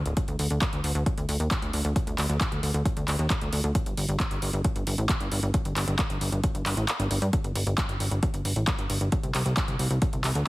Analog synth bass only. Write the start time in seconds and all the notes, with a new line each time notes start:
0.06 D1
0.28 D2
0.39 D2
0.51 D2
0.73 D2
0.84 D2
0.95 D2
1.18 D2
1.29 D2
1.40 D#2
1.62 D2
1.74 D2
1.85 D2
2.07 D2
2.18 D2
2.29 D2
2.52 D2
2.63 D2
2.74 D2
2.97 D2
3.08 D2
3.19 D#2
3.42 D2
3.53 D2
3.64 D2
3.86 G1
3.97 G1
4.09 G1
4.31 G1
4.42 G1
4.53 G1
4.76 G1
4.87 G1
4.98 A1
5.21 G1
5.32 G1
5.43 G1
5.65 G1
5.76 G1
5.88 G1
6.10 G1
6.21 G1
6.32 G1
6.55 G1
6.66 G1
6.77 A1
7.00 G1
7.11 G1
7.22 G2
7.44 G1
7.55 G1
7.67 G1
7.89 G1
8.00 G1
8.11 G1
8.34 G1
8.45 G1
8.56 A1
8.79 G1
8.90 G1
9.01 G1
9.23 C2
9.35 C2
9.46 C2
9.68 C2
9.79 C2
9.91 C2
10.13 C2
10.24 C2
10.35 D2